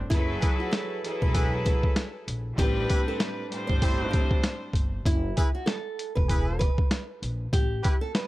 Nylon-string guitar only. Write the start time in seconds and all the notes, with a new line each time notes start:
0.10 E4
0.60 F#4
0.71 A4
1.22 B4
1.65 B4
2.59 G4
3.08 A4
3.20 B4
3.67 C5
4.11 G4
5.06 E4
5.55 F#4
5.66 A4
6.15 B4
6.59 B4
7.53 G4
8.01 A4
8.15 B4